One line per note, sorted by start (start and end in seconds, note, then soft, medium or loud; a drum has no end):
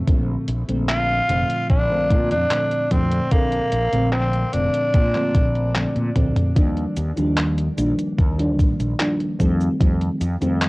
0.07 0.35 A#1 medium
0.07 0.46 A#2 medium
0.07 0.46 D3 medium
0.07 0.46 F3 medium
0.07 0.46 A3 medium
0.07 0.47 C4 medium
0.07 kick loud
0.07 closed hi-hat medium
0.48 0.62 A#1 medium
0.48 closed hi-hat medium
0.68 1.19 A#1 medium
0.68 1.24 A#2 medium
0.68 1.24 D3 medium
0.68 1.24 F3 medium
0.68 1.24 A3 medium
0.68 1.25 C4 medium
0.68 closed hi-hat soft
0.89 1.66 F4 loud
0.89 clap loud
0.89 closed hi-hat medium
1.28 1.43 F1 medium
1.28 1.85 A#2 medium
1.28 1.85 D3 medium
1.28 1.85 F3 medium
1.28 1.85 A3 medium
1.28 1.86 C4 medium
1.28 closed hi-hat medium
1.50 closed hi-hat soft
1.70 2.12 A#1 medium
1.70 2.27 D4 loud
1.70 kick loud
1.70 closed hi-hat medium
1.90 2.46 A#2 medium
1.90 2.46 D3 medium
1.90 2.46 F3 medium
1.90 2.46 A3 medium
1.90 2.46 C4 medium
2.10 2.32 A#2 loud
2.10 kick loud
2.10 closed hi-hat medium
2.31 2.44 F2 medium
2.31 2.93 D4 loud
2.31 closed hi-hat soft
2.50 2.86 A#2 medium
2.50 2.86 D3 medium
2.50 2.86 F3 medium
2.50 2.87 A3 medium
2.50 2.87 C4 medium
2.50 clap loud
2.50 closed hi-hat medium
2.71 closed hi-hat soft
2.90 3.19 F2 medium
2.90 3.27 A#2 medium
2.90 3.27 D3 medium
2.90 3.27 F3 medium
2.90 3.27 A3 medium
2.90 3.33 C4 medium
2.90 3.27 C4 medium
2.90 kick medium
2.90 closed hi-hat medium
3.12 closed hi-hat soft
3.31 3.59 A#1 loud
3.31 3.70 A#2 medium
3.31 3.71 D3 medium
3.31 3.71 F3 medium
3.31 4.12 A#3 loud
3.31 3.71 C4 medium
3.31 3.71 A4 medium
3.31 kick loud
3.31 closed hi-hat medium
3.52 closed hi-hat soft
3.72 3.86 A#1 medium
3.72 closed hi-hat medium
3.92 4.43 A#1 medium
3.92 4.48 A#2 medium
3.92 4.48 D3 medium
3.92 4.49 F3 medium
3.92 4.49 A3 medium
3.92 4.49 C4 medium
3.92 closed hi-hat medium
4.13 4.55 C4 medium
4.13 clap loud
4.13 closed hi-hat medium
4.33 closed hi-hat soft
4.53 4.67 F1 medium
4.53 5.09 A#2 medium
4.53 5.09 D3 medium
4.53 5.10 F3 medium
4.53 5.10 A3 medium
4.53 5.10 C4 medium
4.53 6.16 D4 medium
4.53 closed hi-hat medium
4.74 closed hi-hat medium
4.94 5.36 A#2 medium
4.94 kick loud
4.94 closed hi-hat medium
5.14 5.70 A#2 medium
5.14 5.70 D3 medium
5.14 5.70 F3 medium
5.14 5.70 A3 medium
5.14 5.71 C4 medium
5.14 clap soft
5.35 5.85 A#1 medium
5.35 kick loud
5.35 closed hi-hat medium
5.55 closed hi-hat soft
5.74 6.11 A#2 medium
5.74 6.11 D3 medium
5.74 6.11 F3 medium
5.74 6.11 A3 medium
5.74 6.11 C4 medium
5.74 clap loud
5.74 closed hi-hat medium
5.96 6.09 A#2 medium
5.96 closed hi-hat soft
6.15 6.30 D2 medium
6.15 6.51 A#2 medium
6.15 6.51 D3 medium
6.15 6.51 F3 medium
6.15 6.52 A3 medium
6.15 6.52 C4 medium
6.15 kick medium
6.15 closed hi-hat medium
6.15 high tom medium
6.36 closed hi-hat medium
6.36 mid tom medium
6.55 6.84 D#2 loud
6.55 6.95 D#3 medium
6.55 6.95 F3 medium
6.55 6.95 G3 medium
6.55 6.95 A#3 medium
6.55 6.95 D4 medium
6.55 kick loud
6.55 closed hi-hat loud
6.55 cabasa soft
6.77 closed hi-hat soft
6.97 7.11 D#2 loud
6.97 closed hi-hat medium
6.97 cabasa medium
7.16 7.67 D#2 medium
7.16 7.73 D#3 medium
7.16 7.73 F3 medium
7.16 7.73 G3 medium
7.16 7.73 A#3 medium
7.16 7.73 D4 medium
7.16 closed hi-hat soft
7.16 cabasa soft
7.37 clap loud
7.37 closed hi-hat medium
7.37 cabasa soft
7.58 closed hi-hat soft
7.77 7.92 A#1 loud
7.77 8.34 D#3 medium
7.77 8.34 F3 medium
7.77 8.34 G3 medium
7.77 8.34 A#3 medium
7.77 8.34 D4 medium
7.77 closed hi-hat medium
7.77 cabasa medium
7.99 closed hi-hat soft
7.99 cabasa soft
8.18 8.59 D#2 loud
8.18 kick loud
8.18 closed hi-hat loud
8.18 cabasa soft
8.38 8.94 D#3 medium
8.38 8.94 F3 medium
8.38 8.95 G3 medium
8.38 8.95 A#3 medium
8.38 8.95 D4 medium
8.38 closed hi-hat soft
8.59 8.73 A#1 loud
8.59 kick loud
8.59 closed hi-hat medium
8.59 cabasa medium
8.80 8.93 A#1 medium
8.80 closed hi-hat soft
8.80 cabasa soft
8.99 9.35 D#3 medium
8.99 9.35 F3 medium
8.99 9.35 G3 medium
8.99 9.35 A#3 medium
8.99 9.36 D4 medium
8.99 clap loud
8.99 closed hi-hat loud
8.99 cabasa soft
9.20 closed hi-hat soft
9.39 9.67 F2 medium
9.39 9.75 D#3 medium
9.39 9.75 F3 medium
9.39 9.76 G3 medium
9.39 9.76 A3 medium
9.39 9.76 C4 loud
9.39 kick medium
9.39 closed hi-hat soft
9.39 cabasa medium
9.61 cabasa soft
9.80 10.08 F2 loud
9.80 10.19 D#3 medium
9.80 10.19 F3 medium
9.80 10.19 G3 medium
9.80 10.19 A3 medium
9.80 10.20 C4 medium
9.80 kick loud
9.80 closed hi-hat loud
9.80 cabasa soft
10.01 closed hi-hat soft
10.21 10.35 F2 loud
10.21 closed hi-hat medium
10.21 cabasa medium
10.41 10.69 F2 medium
10.41 10.69 D#3 medium
10.41 10.69 F3 medium
10.41 10.69 G3 medium
10.41 10.69 A3 medium
10.41 10.69 C4 medium
10.41 closed hi-hat soft
10.41 cabasa soft
10.61 clap loud
10.61 closed hi-hat loud
10.61 cabasa soft